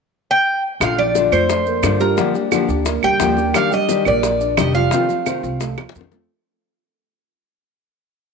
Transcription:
0.31 G5
0.80 A#1 D3 A3 D4 F4 F5, high bongo, claves, maracas
0.98 F3 A3 D4 F4 D5, maracas
1.15 D3 A3 D4 F4, high bongo, maracas
1.32 F2 A3 D4 F4 A4 C5, claves, maracas
1.49 muted nylon-string guitar stroke, high bongo, maracas
1.66 A#3 A#4, maracas
1.83 G2 D3 A3 D4 F4, high bongo, low bongo, claves, maracas
2.00 G3 A3 D4 F4 G4 A#4, maracas
2.17 D3 F3 G3 A#3 D4 G4, high bongo, maracas
2.34 A#3 D4 G4, high bongo, maracas
2.51 D3 F3 A#3 D4 G4 D5, high bongo, claves, maracas
2.68 D2 A#3 D4 G4, maracas
2.85 A#3 A#4, muted nylon-string guitar stroke, high bongo, maracas
3.03 D2 G3 G4 G5, high bongo, claves, maracas
3.20 D#2 D3 F3 A#3 D4 G4, high bongo, low bongo, maracas
3.37 A#3 D4 G4 A#4, high bongo, maracas
3.53 D#3 G3 D4 G4 F5, high bongo, claves, maracas
3.71 G3 D4 G4 D#5, maracas
3.88 D#3 G3 D4 G4, high bongo, maracas
4.05 A#1 G3 A#3 D4 G4 A#4 D5, claves, maracas
4.22 muted nylon-string guitar stroke, high bongo, maracas
4.40 D4 D5, maracas
4.57 F1 D#3 G3 D4 G4 D#5, high bongo, low bongo, claves, maracas
4.74 F3 G3 D4 F4 G4 F5, maracas
4.91 C3 D#3 F3 A3 C4 F4, high bongo, maracas
5.09 A3 C4 F4, high bongo, maracas
5.26 C3 D#3 A3 C4 F4 C5, high bongo, claves, maracas
5.43 C2 A3 C4 F4, maracas
5.60 A3 A4, muted nylon-string guitar stroke, high bongo, maracas
5.78 D#2 F3 F4, high bongo, claves, maracas
5.89 high bongo
5.95 F2 C3 D#3 A3 C4 F4, maracas
6.01 low bongo
6.12 A3 C4 F4 A4, low bongo, maracas

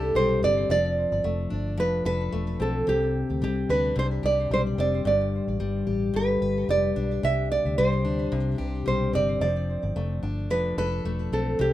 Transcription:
Already playing: C2 C3 G3 D4 G4 A4
0.15 B1 G3 C5
0.42 G1 C4 D5
0.69 F1 F3 D5
1.12 G1
1.24 F1 A3
1.50 G1 D4
1.78 F1 F3 B4
2.05 F1 A4 B4
2.32 E1 A3
2.60 B1 C4 A4
2.87 C2 C3 G4
3.30 D2
3.42 C2 G3 G4
3.69 D2 D4 B4
3.96 C2 C3 C5
4.23 C2 G4 D5
4.51 B1 G3 C5
4.78 F1 C4 D5
5.05 G1 G2 D5
5.48 A1
5.60 G1 G3
5.87 A1 G4
6.14 G1 G2 B4
6.41 G1 B4
6.69 F1 G3 D5
6.96 B1 D4
7.23 C2 C3 E5
7.52 D5
7.65 D2
7.78 C2 G3 C5
8.05 D2 D4
8.32 C2 C3
8.58 C2 G4
8.86 B1 G3 C5
9.13 G1 C4 D5
9.41 F1 F3 D5
9.83 G1
9.96 F1 A3
10.23 G1 D4
10.50 F1 F3 B4
10.77 F1 A4 B4
11.05 E1 A3
11.32 B1 C4 A4
11.59 C2 C3 G4

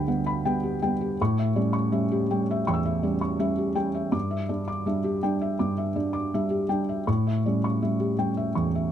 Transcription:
Already playing: D2 G2 G3 B3 G4 F#5 G5 B5
0.07 G3 B3 F#5
0.26 B5
0.45 G3 B3 G5
0.63 G4
0.82 G3 B3 G5
1.01 G4
1.21 A2 C#6
1.39 E5
1.56 G3 C#4 D5
1.73 C#6
1.92 G3 C#4 E5
2.11 G4
2.30 G3 C#4 G5
2.51 E5
2.67 E2 G5 C#6
2.74 E6
2.85 E5
3.03 G3 C#4 D5
3.21 C#6
3.39 G3 C#4 E5
3.58 G4
3.75 G3 C#4 G5
3.95 E5
4.12 G2 D6
4.31 E5
4.49 G3 D4 D5
4.68 D6
4.86 G3 D4 E5
5.04 G4
5.23 G3 D4 G5
5.41 E5
5.59 G2 D6
5.78 E5
5.96 G3 D4 D5
6.13 D6
6.34 G3 D4 E5
6.50 G4
6.69 G3 D4 G5
6.89 E5
7.07 A2 C#6
7.27 E5
7.46 G3 C#4 D5
7.64 C#6
7.82 G3 C#4 E5
8.00 G4
8.19 G3 C#4 G5
8.37 E5
8.55 E2 C#6
8.75 E5

